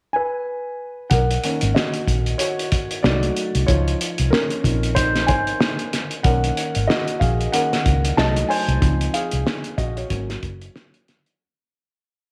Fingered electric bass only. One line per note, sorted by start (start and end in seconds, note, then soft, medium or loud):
1.12 1.36 B1 medium
1.63 1.73 G#1 medium
2.08 2.33 A#1 medium
3.04 3.29 C2 medium
3.55 3.65 C2 medium
3.69 3.93 C#2 medium
4.19 4.30 C2 medium
4.65 5.29 A#1 medium
5.29 5.54 G#1 medium
6.25 6.50 B1 loud
6.76 6.86 G#1 medium
7.21 7.46 A#1 medium
7.86 8.11 C#2 medium
8.17 8.42 C2 medium
8.68 8.79 C2 medium
8.82 9.07 C#2 loud
9.33 9.43 C2 medium
9.78 10.03 A#1 medium
10.10 10.35 G#1 medium
10.43 10.68 F#1 medium